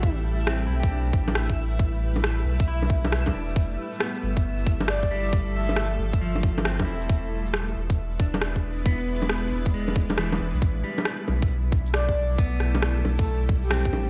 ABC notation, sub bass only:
X:1
M:4/4
L:1/16
Q:"Swing 16ths" 1/4=136
K:Flyd
V:1 name="Sub bass" clef=bass
A,,,6 B,,,4 A,,,6- | A,,,6 B,,,8 E,,,2 | F,,,2 z4 G,,,8- G,,,2- | G,,,6 G,,,8 E,,,2- |
E,,,6 E,,,4 E,,,6- | E,,,6 E,,,8 E,,, B,,, | A,,,2 z4 B,,,8- B,,,2- | B,,,6 B,,,8 A,,,2 |]